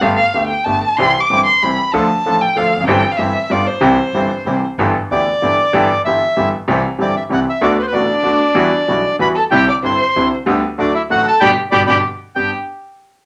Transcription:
X:1
M:3/4
L:1/16
Q:1/4=190
K:C
V:1 name="Bandoneon"
z12 | z12 | z12 | z12 |
z12 | [K:G] z4 d8- | d4 e6 z2 | z4 d2 e2 f2 e2 |
d2 B/2 c/2 B d8- | d8 b2 a2 | g2 d'2 c'6 z2 | z4 d2 e2 f2 a2 |
[dgb]2 z2 [dgb]2 [dgb]2 z4 | g2 z8 z2 |]
V:2 name="Violin"
f2 f4 g2 a4 | c'3 d'3 c'2 b4 | a6 g2 f4 | g3 f e4 d2 c2- |
c8- c2 z2 | [K:G] z12 | z12 | z12 |
z4 D8- | D8 B2 A2 | G2 d2 c6 z2 | z4 D2 E2 F2 A2 |
G2 z2 G2 G2 z4 | G2 z8 z2 |]
V:3 name="Bandoneon"
[A,B,G]2 z2 [A,B,G]2 z2 [A,B,G]2 z2 | [CEG]2 z2 [CEG]2 z2 [CEG]2 z2 | [DFA]2 z2 [DFA]2 z2 [DFA]2 z2 | [CEG]2 z2 [CEG]2 z2 [B,FG]2 z2 |
[CEG]2 z2 [CEG]2 z2 [CEG]2 z2 | [K:G] [B,EG]2 z2 [B,EG]2 z2 [B,EG]2 z2 | [B,EG]2 z2 [B,EG]2 z2 [B,EG]2 z2 | [CEG]2 z2 [CEG]2 z2 [CEG]2 z2 |
[B,DF]2 z2 [B,DF]2 z2 [B,DF]2 z2 | [G,EF]2 z2 [G,EF]2 z2 [G,EF]2 z2 | [CDE]2 z2 [CDE]2 z2 [CDE]2 z2 | [B,DG]2 z2 [A,DF]2 z2 [A,DF]2 z2 |
[B,DG]2 z2 [B,DG]2 [B,DG]2 z4 | [B,DG]2 z8 z2 |]
V:4 name="Grand piano" clef=bass
[G,,,G,,D,A,B,G]2 z2 [D,,D,A,B,G]2 z2 [G,,,G,,D,A,B,G]2 z2 | [C,,C,E,G,CG]2 z2 [G,,,G,,E,G,CG]2 z2 [C,,C,E,G,CG]2 z2 | [D,,D,F,A,DA]2 z2 [A,,,A,,F,A,DA]2 z2 [D,,D,F,A,DA]2 z/2 E,,/2 F,,/2 ^F,,/2 | [G,,,G,,E,G,CG]2 z2 [G,,,G,,E,G,CG]2 z2 [G,,,G,,D,G,B,F]2 z2 |
[C,,C,E,G,CG]2 z2 [G,,,G,,E,G,CG]2 z2 [C,,C,E,G,CG]2 z2 | [K:G] [G,,,G,,E,B,DG]2 z2 [D,,D,E,B,DG]2 z2 [G,,,G,,E,B,DG]2 z2 | [G,,,G,,E,G,B,G]2 z2 [G,,,G,,E,G,B,G]2 z2 [G,,,G,,E,G,B,G]2 z2 | [C,,C,E,G,CG]2 z2 [G,,,G,,E,G,CG]2 z2 [C,,C,E,G,CG]2 z2 |
[D,,D,A,B,F]2 z2 [A,,,A,,D,A,B,F]2 z2 [D,,D,A,B,F]2 z2 | [E,,E,G,B,F]2 z2 [B,,,B,,E,G,B,F]2 z2 [E,,E,G,B,F]2 z2 | [C,,C,D,G,CE]2 z2 [G,,,G,,D,G,CE]2 z2 [C,,C,D,G,CE]2 z2 | [D,,D,G,B,G]2 z2 [D,,D,F,A,F]2 z2 [A,,,A,,D,F,A,F]2 z2 |
[B,,D,G,]2 z2 [B,,D,G,]2 [B,,D,G,]2 z4 | [G,,B,DG]2 z8 z2 |]
V:5 name="Upright bass" clef=bass
G,,,3/2 z2 z/2 D,,3/2 z2 z/2 G,,,3/2 z2 z/2 | C,,3/2 z2 z/2 G,,,3/2 z2 z/2 C,,3/2 z2 z/2 | D,,3/2 z2 z/2 A,,,3/2 z2 z/2 D,,3/2 z E,,,/2 F,,,/2 ^F,,,/2 | G,,,3/2 z2 z/2 G,,,3/2 z2 z/2 G,,,3/2 z2 z/2 |
C,,3/2 z2 z/2 G,,,3/2 z2 z/2 C,,3/2 z2 z/2 | [K:G] G,,,3/2 z2 z/2 D,,3/2 z2 z/2 G,,,3/2 z2 z/2 | G,,,3/2 z2 z/2 G,,,3/2 z2 z/2 G,,,3/2 z2 z/2 | C,,3/2 z2 z/2 G,,,3/2 z2 z/2 C,,3/2 z2 z/2 |
D,,3/2 z2 z/2 A,,,3/2 z2 z/2 D,,3/2 z2 z/2 | E,,3/2 z2 z/2 B,,,3/2 z2 z/2 E,,3/2 z2 z/2 | C,,3/2 z2 z/2 G,,,3/2 z2 z/2 C,,3/2 z2 z/2 | D,,3/2 z2 z/2 D,,3/2 z2 z/2 A,,,3/2 z2 z/2 |
G,,,3/2 z2 z/2 G,,,3/2 z/2 G,,,3/2 z4 z/2 | G,,,2 z8 z2 |]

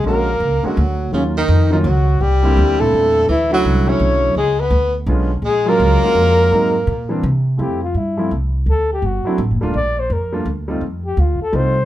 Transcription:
X:1
M:3/4
L:1/8
Q:"Swing" 1/4=167
K:Abmix
V:1 name="Flugelhorn"
B3 ^F3 | D E2 E G2 | =G3 =A3 | =E ^F2 ^c3 |
A _c2 z3 | A B4- B- | B4 z2 | [K:F] G F E2 z2 |
A G ^F2 z2 | d c B2 z2 | z G F A c2 |]
V:2 name="Grand piano"
[=D,A,B,^C^F] z2 [D,A,B,CF] z2 | [E,G,B,DF] z2 [E,G,B,DF] z2 | z [=D,=G,B,C=E]2 [B,,D,G,CE]3 | z [=D,^F,=A,^C=E]2 [D,F,A,CE]3 |
z4 [=D,A,_C_DF] z | z [G,A,B,DF]2 [A,B,DFG]3 | [G,A,B,CE] z2 [_F,=G,B,C=D] z2 | [K:F] [F,G,A,CE] z2 [F,G,A,CE] z2 |
z3 [^F,A,CDE] z [G,A,B,D=F] | z3 [G,A,B,DF] z [G,A,C_EF] | z4 [G,A,C_EF] z |]
V:3 name="Tenor saxophone" clef=bass
B,3 ^F,3 | D, E,2 E, G,2 | =G,3 =A,3 | =E, ^F,2 ^C3 |
A, _C2 z3 | A, B,4- B,- | B,4 z2 | [K:F] z6 |
z6 | z6 | z6 |]
V:4 name="Upright bass" clef=bass
B,,,2 ^C,, z =D,,2 | E,,2 F,,2 D,,2 | C,,2 =D,,2 =E,,2 | =D,,2 C,,2 _C,,2 |
D,,2 =D,,2 _C,,2 | B,,,2 D,, z F,,2 | A,,2 B,,2 C,2 | [K:F] F,,2 G,,2 C,,2 |
D,,2 G,,, z (3A,,, ^F,,, D,,, | B,,,2 F,,2 D,,2 | F,,2 D,, z C,,2 |]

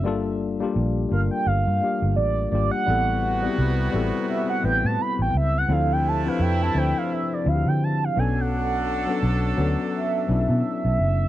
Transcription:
X:1
M:4/4
L:1/16
Q:"Swing 16ths" 1/4=85
K:Ador
V:1 name="Soft synth lead"
z6 =f g f4 d2 d ^f- | f6 z2 e f g a b g e f | =f g a f g a g f e d f g a f ^g ^f- | f6 z2 e8 |]
V:2 name="Tine electric piano"
[G,_B,D=FA]3 [G,B,DFG]3 [G,B,DF_B]4 [G,B,DFG]4 [G,B,DFG]2 | [G,B,CEA]3 [G,B,CEG]3 [G,B,CEA]4 [G,B,CEB]4- [G,B,CEB] z | [=F,CDEA]3 [F,CDEB]3 [F,CDEc]4 [F,CDE^FG]4 [^F,B,^CDA]2- | [F,B,^CDA]2 z [F,B,CDA]3 [F,B,CDA]4 [F,B,CDE]4- [F,B,CDE] z |]
V:3 name="Horn section"
z16 | [C,B,F]12- [C,B,F]2 z2 | [C,A,E]12 z2 [F,DA]2- | [F,DA]12- [F,DA]2 z2 |]
V:4 name="Fingered electric bass" clef=bass
G,,,4 _B,,,2 G,,, z G,,, G,, z G,,, A,,,2 ^G,,, z | A,,,4 C,,2 A,,, z3 A,,, A,, z A,,, ^C,,2 | D,,4 =F,,2 D,, z3 D,, D,3 B,,,2- | B,,,4 B,,,2 D,, z3 B,,, B,, z B,,, F,,,2 |]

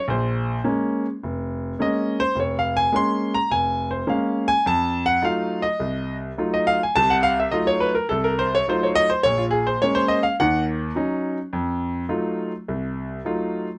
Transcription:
X:1
M:4/4
L:1/16
Q:"Swing" 1/4=105
K:Bbm
V:1 name="Grand piano"
c4 z8 e2 c2 | (3d2 f2 a2 c'2 b2 a2 c2 f2 a2 | =a2 g2 f2 e4 z3 e f _a | =a g f =e _e d _c B =A B =c d c d e c |
d F A c d c e f g2 z6 | z16 |]
V:2 name="Grand piano"
B,,,4 [A,B,D]2 z2 F,,,4 [A,B,D]2 z2 | F,,,4 [A,B,D]2 z2 F,,,4 [A,B,D]2 z2 | F,,4 [G,=A,EF]2 z2 C,,4 [G,A,EF]2 z2 | [C,,C,]4 [G,=A,EF]2 z2 C,,4 [G,A,EF]2 z2 |
B,,,4 [A,B,D]2 z2 [E,,E,]4 [G,DE]2 z2 | F,,4 [G,=A,EF]2 z2 C,,4 [G,A,EF]2 z2 |]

